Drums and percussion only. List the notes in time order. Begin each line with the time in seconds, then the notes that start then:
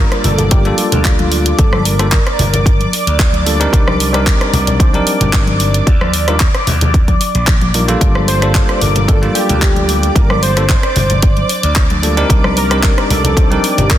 0.12 cross-stick, closed hi-hat
0.24 open hi-hat, low conga
0.38 closed hi-hat, high conga, low conga
0.51 kick, closed hi-hat
0.65 closed hi-hat, high conga
0.78 open hi-hat
0.92 closed hi-hat, low conga
1.05 kick, clap, closed hi-hat
1.19 closed hi-hat, high conga
1.32 open hi-hat
1.46 closed hi-hat
1.59 kick, closed hi-hat
1.72 cross-stick, high conga
1.85 open hi-hat
1.99 cross-stick, closed hi-hat
2.12 kick, clap, closed hi-hat
2.27 cross-stick, closed hi-hat
2.39 open hi-hat, low conga
2.53 closed hi-hat, high conga, low conga
2.66 kick, closed hi-hat
2.80 closed hi-hat, high conga
2.93 open hi-hat
3.07 closed hi-hat
3.19 kick, clap, closed hi-hat
3.33 closed hi-hat, high conga
3.46 open hi-hat
3.61 closed hi-hat
3.73 kick, closed hi-hat
3.87 cross-stick, high conga
4.00 open hi-hat
4.14 cross-stick, closed hi-hat
4.26 kick, clap, closed hi-hat
4.41 cross-stick, closed hi-hat
4.53 open hi-hat, low conga
4.67 closed hi-hat, high conga, low conga
4.80 kick, closed hi-hat
4.93 closed hi-hat, high conga
5.07 open hi-hat
5.20 closed hi-hat, low conga
5.33 kick, clap, closed hi-hat
5.47 closed hi-hat, high conga
5.60 open hi-hat
5.74 closed hi-hat
5.87 kick, closed hi-hat
6.01 cross-stick, high conga
6.13 open hi-hat
6.28 cross-stick, closed hi-hat
6.40 kick, clap, closed hi-hat
6.54 cross-stick, closed hi-hat
6.67 open hi-hat, low conga
6.81 closed hi-hat, high conga, low conga
6.94 kick, closed hi-hat
7.08 kick, closed hi-hat, high conga
7.21 open hi-hat
7.35 closed hi-hat
7.47 kick, clap, closed hi-hat
7.61 closed hi-hat, high conga
7.74 open hi-hat
7.88 closed hi-hat
8.01 kick, closed hi-hat
8.15 cross-stick, high conga
8.28 open hi-hat
8.42 cross-stick, closed hi-hat
8.55 kick, clap, closed hi-hat
8.69 cross-stick, closed hi-hat
8.81 open hi-hat, low conga
8.95 closed hi-hat, high conga, low conga
9.08 kick, closed hi-hat
9.23 closed hi-hat, high conga
9.35 open hi-hat
9.49 closed hi-hat, low conga
9.62 kick, clap, closed hi-hat
9.76 closed hi-hat, high conga
9.89 open hi-hat
10.03 closed hi-hat
10.16 kick, closed hi-hat
10.30 cross-stick, high conga
10.43 open hi-hat
10.57 cross-stick, closed hi-hat
10.69 kick, clap, closed hi-hat
10.83 cross-stick, closed hi-hat
10.96 open hi-hat, low conga
11.10 closed hi-hat, high conga, low conga
11.22 kick, closed hi-hat
11.37 closed hi-hat, high conga
11.49 open hi-hat
11.63 closed hi-hat
11.76 kick, clap, closed hi-hat
11.90 closed hi-hat, high conga
12.03 open hi-hat
12.17 closed hi-hat
12.30 kick, closed hi-hat
12.44 cross-stick, high conga
12.57 open hi-hat
12.71 cross-stick, closed hi-hat
12.83 kick, clap, closed hi-hat
12.98 cross-stick, closed hi-hat
13.10 open hi-hat, low conga
13.24 closed hi-hat, high conga, low conga
13.37 kick, closed hi-hat
13.51 closed hi-hat, high conga
13.64 open hi-hat
13.78 closed hi-hat, low conga
13.90 kick, clap, closed hi-hat